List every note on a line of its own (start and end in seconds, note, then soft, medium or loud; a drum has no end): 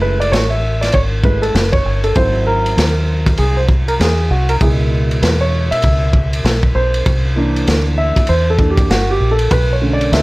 0.00 0.29 F#1 medium
0.00 0.59 G#3 medium
0.00 0.59 A3 medium
0.00 0.60 E4 medium
0.00 0.21 B4 medium
0.20 0.33 D5 medium
0.20 ride soft
0.32 0.91 A1 medium
0.32 0.51 C#5 medium
0.32 snare loud
0.32 hi-hat pedal medium
0.32 ride medium
0.50 0.82 E5 medium
0.81 0.94 D5 medium
0.81 snare soft
0.81 ride medium
0.92 1.52 G#1 medium
0.92 1.00 C#5 medium
0.92 kick medium
0.92 ride medium
1.23 1.52 G#3 medium
1.23 1.52 A3 soft
1.23 1.52 E4 soft
1.23 1.44 B4 medium
1.23 kick medium
1.42 1.55 A4 medium
1.42 ride soft
1.55 1.84 F#1 loud
1.55 1.74 B4 medium
1.55 snare loud
1.55 hi-hat pedal medium
1.55 ride medium
1.72 2.01 C#5 medium
1.72 kick medium
1.85 2.15 G1 medium
2.04 2.15 A4 medium
2.04 ride soft
2.16 2.74 G#1 loud
2.16 4.57 F#3 medium
2.16 4.57 C4 medium
2.16 4.57 E4 medium
2.16 2.48 C5 loud
2.16 kick loud
2.16 ride medium
2.47 3.41 A#4 medium
2.66 ride soft
2.77 3.36 D#2 loud
2.77 snare loud
2.77 hi-hat pedal soft
2.77 ride medium
3.26 kick loud
3.26 ride medium
3.37 3.97 C2 medium
3.37 3.56 G#4 medium
3.37 ride medium
3.57 3.64 C5 medium
3.69 kick medium
3.88 3.93 A#4 medium
3.88 ride soft
4.00 4.29 E2 medium
4.00 4.29 G#4 medium
4.00 snare loud
4.00 hi-hat pedal soft
4.00 ride medium
4.30 4.60 C2 medium
4.30 4.50 F#4 medium
4.49 4.54 A#4 medium
4.49 ride medium
4.61 5.19 C#2 loud
4.61 7.02 B2 medium
4.61 7.02 G#3 medium
4.61 7.03 E4 medium
4.61 4.69 G#4 medium
4.61 kick loud
4.61 ride medium
5.11 ride soft
5.22 5.69 E2 medium
5.22 5.40 B4 medium
5.22 snare loud
5.22 hi-hat pedal medium
5.22 ride medium
5.41 5.69 C#5 medium
5.71 6.78 E5 loud
5.71 muted fingered electric bass stroke soft
5.71 ride medium
5.82 6.42 C#2 loud
5.82 kick medium
5.82 ride medium
6.13 kick medium
6.33 ride medium
6.44 6.74 B1 medium
6.44 snare loud
6.44 hi-hat pedal medium
6.44 ride medium
6.63 kick medium
6.75 7.04 B1 medium
6.75 7.63 C5 medium
6.94 ride soft
7.06 7.64 C2 loud
7.06 kick loud
7.06 ride medium
7.36 8.24 E3 medium
7.36 8.25 A#3 medium
7.36 8.25 D4 medium
7.56 ride soft
7.68 8.14 D2 medium
7.68 snare loud
7.68 hi-hat pedal medium
7.68 ride medium
7.98 8.29 E5 loud
8.16 kick loud
8.16 ride medium
8.27 8.87 E2 medium
8.27 8.48 C5 loud
8.27 ride medium
8.50 8.71 A4 medium
8.59 8.87 E3 soft
8.59 8.87 A#3 soft
8.59 8.87 D4 medium
8.59 kick medium
8.70 8.89 G4 medium
8.77 kick medium
8.77 ride medium
8.90 9.19 G1 medium
8.90 9.11 F#4 medium
8.90 snare medium
8.90 hi-hat pedal soft
8.90 ride medium
9.11 9.29 G4 medium
9.20 9.49 A#1 medium
9.31 9.52 A4 medium
9.39 ride medium
9.51 10.09 B1 loud
9.51 9.73 B4 medium
9.51 kick loud
9.51 ride medium
9.73 9.93 C#5 medium
9.82 10.22 D3 medium
9.82 10.22 A3 soft
9.82 10.22 C#4 medium
9.93 10.14 D5 medium
10.01 ride soft
10.12 10.22 D2 medium
10.12 10.22 E5 medium
10.12 snare loud
10.12 hi-hat pedal medium
10.12 ride medium